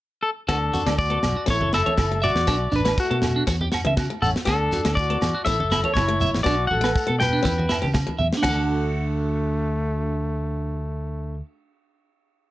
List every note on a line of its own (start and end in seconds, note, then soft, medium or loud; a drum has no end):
0.23 0.29 A4 medium
0.48 0.69 D2 medium
0.48 0.68 B3 medium
0.48 0.95 D4 medium
0.48 0.56 F#4 medium
0.48 0.98 A4 medium
0.48 kick medium
0.48 snare medium
0.48 low agogo medium
0.48 shekere medium
0.73 0.81 F#4 medium
0.73 high conga medium
0.73 shekere medium
0.86 1.17 D2 medium
0.86 1.06 A3 medium
0.86 0.93 D5 medium
0.86 snare medium
0.86 low agogo medium
0.99 1.45 F#4 medium
0.99 1.49 D5 medium
0.99 kick medium
0.99 shekere medium
1.10 1.30 B3 medium
1.10 1.18 A4 medium
1.23 1.34 B1 medium
1.23 snare medium
1.23 low agogo medium
1.23 shekere medium
1.36 1.43 F#4 medium
1.46 1.59 A1 medium
1.46 1.66 C#4 medium
1.46 1.71 E4 medium
1.46 1.55 A4 medium
1.46 kick medium
1.46 snare medium
1.46 shekere medium
1.50 1.72 C#5 medium
1.61 1.82 F#1 medium
1.61 1.68 A4 medium
1.61 high conga medium
1.73 1.81 E4 medium
1.73 2.20 A4 medium
1.73 2.23 E5 medium
1.73 snare medium
1.73 low agogo medium
1.73 shekere medium
1.86 2.06 B3 medium
1.86 1.93 C#5 medium
1.86 high conga medium
1.97 2.30 F#1 medium
1.97 2.05 E4 medium
1.97 kick medium
1.97 snare medium
1.97 low conga medium
1.97 low agogo medium
1.97 shekere medium
2.12 2.31 A3 medium
2.22 2.69 F#4 medium
2.22 2.74 D5 loud
2.22 2.30 E5 medium
2.22 low conga medium
2.22 shekere medium
2.35 2.45 E2 medium
2.35 snare medium
2.47 2.68 B1 medium
2.47 2.55 D4 medium
2.47 muted steel-string acoustic guitar stroke medium
2.47 kick medium
2.47 snare medium
2.47 low agogo medium
2.47 shekere medium
2.72 2.93 A1 medium
2.72 2.80 D4 medium
2.72 high conga medium
2.72 shekere medium
2.76 2.97 D4 medium
2.76 2.97 B4 medium
2.85 3.05 A3 medium
2.85 2.92 B4 medium
2.85 snare medium
2.85 low agogo medium
2.85 shekere soft
2.98 3.46 A3 medium
2.98 3.45 F#4 medium
2.98 kick medium
2.98 shekere medium
3.11 3.41 B2 medium
3.11 3.30 B3 medium
3.11 3.17 A4 medium
3.22 snare medium
3.22 low conga medium
3.22 low agogo medium
3.22 shekere medium
3.36 3.43 D4 medium
3.47 3.68 E2 loud
3.47 3.67 C#4 medium
3.47 3.55 F#4 medium
3.47 kick medium
3.47 snare medium
3.47 shekere medium
3.61 3.68 G4 medium
3.61 high conga medium
3.72 3.80 F#4 medium
3.72 snare medium
3.72 low agogo medium
3.72 shekere medium
3.85 4.07 C#3 medium
3.85 4.05 B3 medium
3.85 3.93 E5 medium
3.85 high conga medium
3.97 4.05 F#4 medium
3.97 kick medium
3.97 snare medium
3.97 low conga medium
3.97 low agogo medium
3.97 shekere medium
4.10 4.30 A3 medium
4.22 4.33 A1 medium
4.22 4.35 C#4 medium
4.22 4.29 A4 medium
4.22 4.30 F#5 medium
4.22 low conga medium
4.22 shekere medium
4.36 snare medium
4.45 4.68 D2 medium
4.45 4.66 B3 medium
4.45 4.95 D4 medium
4.45 4.55 F#4 medium
4.45 4.93 A4 medium
4.45 kick medium
4.45 snare medium
4.45 low agogo medium
4.45 shekere medium
4.72 4.80 F#4 medium
4.72 snare soft
4.72 high conga medium
4.72 shekere medium
4.85 5.16 D2 medium
4.85 5.05 A3 medium
4.85 muted clean electric guitar stroke medium
4.85 snare medium
4.85 low agogo medium
4.85 shekere soft
4.95 5.44 F#4 medium
4.95 5.42 D5 medium
4.95 kick medium
4.95 shekere medium
5.10 5.30 B3 medium
5.10 5.17 A4 medium
5.22 5.33 E2 medium
5.22 snare medium
5.22 low conga medium
5.22 low agogo medium
5.22 shekere medium
5.35 5.42 F#4 medium
5.45 5.58 A1 medium
5.45 5.66 C#4 medium
5.45 5.55 E4 medium
5.45 5.92 A4 medium
5.45 5.92 E5 medium
5.45 kick medium
5.45 snare medium
5.45 shekere medium
5.60 5.81 F#1 medium
5.60 5.67 A4 medium
5.60 high conga medium
5.71 5.79 E4 medium
5.71 snare medium
5.71 low agogo medium
5.71 shekere medium
5.84 6.04 B3 medium
5.84 5.92 C#5 medium
5.84 high conga medium
5.94 6.28 F#1 medium
5.94 6.42 E4 medium
5.94 6.05 E4 medium
5.94 6.41 C#5 medium
5.94 kick medium
5.94 snare medium
5.94 low conga medium
5.94 low agogo medium
5.94 shekere medium
6.08 6.28 A3 medium
6.21 6.29 E5 medium
6.21 low conga medium
6.21 shekere medium
6.34 6.45 A1 medium
6.34 snare medium
6.43 6.67 B1 medium
6.43 6.64 B3 medium
6.43 6.54 D4 medium
6.43 6.68 F#4 medium
6.43 6.67 D5 medium
6.43 kick medium
6.43 snare medium
6.43 low agogo medium
6.43 shekere medium
6.67 6.79 F#4 medium
6.67 7.19 F#5 loud
6.67 high conga medium
6.67 low conga medium
6.71 6.92 A1 medium
6.71 7.17 A4 medium
6.81 7.02 A3 medium
6.81 6.91 B4 medium
6.81 snare medium
6.81 low agogo medium
6.81 shekere soft
6.96 kick medium
6.96 shekere medium
7.07 7.40 B2 medium
7.07 7.27 B3 medium
7.07 7.15 A4 medium
7.20 7.92 B4 medium
7.20 7.90 G5 medium
7.20 snare medium
7.20 low conga medium
7.20 low agogo medium
7.20 shekere medium
7.33 7.40 D4 medium
7.33 shekere soft
7.42 7.66 E2 loud
7.42 7.63 C#4 medium
7.42 7.52 E4 medium
7.42 kick medium
7.42 snare medium
7.42 high conga medium
7.47 shekere medium
7.58 7.65 F#4 medium
7.58 high conga medium
7.69 7.77 E4 medium
7.69 snare medium
7.69 low agogo medium
7.69 shekere medium
7.82 8.04 C#3 medium
7.82 8.02 B3 medium
7.82 7.90 G4 medium
7.82 high conga medium
7.82 shekere soft
7.94 muted clean electric guitar stroke medium
7.94 kick medium
7.94 snare medium
7.94 low conga medium
7.94 low agogo medium
7.94 shekere medium
8.07 8.27 A3 medium
8.07 high conga medium
8.19 8.31 E2 medium
8.19 8.27 E5 medium
8.19 low conga medium
8.33 snare medium
8.33 shekere soft
8.37 11.34 D4 medium
8.43 11.41 D2 medium
8.43 11.43 A3 medium
8.43 8.59 D4 medium
8.43 11.40 F#4 medium
8.43 11.39 F#5 medium
8.43 kick medium
8.43 snare medium
8.43 ride bell medium
8.43 high conga medium
8.43 low agogo medium
8.43 shekere medium
8.49 11.45 A4 medium